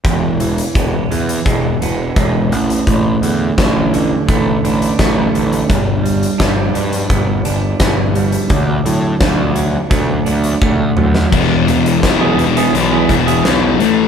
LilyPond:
<<
  \new Staff \with { instrumentName = "Clean electric guitar" } { \time 4/4 \key e \dorian \tempo 4 = 85 e,8 e8 b8 e8 gis8 b8 gis8 a,8 | a,8 d8 d'8 d8 a8 d'8 a8 d8 | g,8 g8 d'8 g8 b8 d'8 b8 g8 | d8 fis8 d'8 fis8 a8 d'8 a8 fis8 |
r4 r16 <e b e' gis'>16 r16 <e b e' gis'>16 r16 <e b e' gis'>16 r16 <e b e' gis'>16 r4 | }
  \new Staff \with { instrumentName = "Distorted electric guitar" } { \clef bass \time 4/4 \key e \dorian r1 | r1 | r1 | r1 |
<e, b, e>8 <e, b, e>8 <e, b, e>8 <e, b, e>8 <e, b, e>8 <e, b, e>8 <e, b, e>8 <a, e a>8 | }
  \new Staff \with { instrumentName = "Picked electric bass" } { \clef bass \time 4/4 \key e \dorian e,,4 e,,8 e,8 e,,8 e,,8 e,,8 a,,8 | a,,8 e,8 a,,4 a,,8 a,,8 a,,8 a,,8 | g,,4 g,,8 g,8 g,,8 g,,8 g,,4 | d,8 a,8 d,4 d,8 d,8 d,8 d,8 |
e,,8 e,,8 e,,8 e,,8 b,,8 e,,8 b,,8 a,,8 | }
  \new DrumStaff \with { instrumentName = "Drums" } \drummode { \time 4/4 <hh bd>8 hh16 hh16 <hh bd>8 hh16 hh16 <hh bd>8 hh8 <hh bd>8 hh16 hh16 | <hh bd>8 hh8 <hh bd sn>8 hh8 <hh bd>8 hh16 hh16 <hh bd sn>8 hh16 hh16 | <hh bd>8 hh16 hh16 <hh bd sn>8 hh16 hh16 <hh bd>8 hh8 <hh bd sn>8 hh16 hh16 | <hh bd>8 hh8 <hh bd sn>8 hh8 <hh bd>8 hh16 hh16 <bd tommh>8 toml16 sn16 |
<cymc bd>8 hh16 hh16 <hh bd sn>8 hh16 hh16 hh8 <hh bd>16 hh16 <hh sn>8 hh8 | }
>>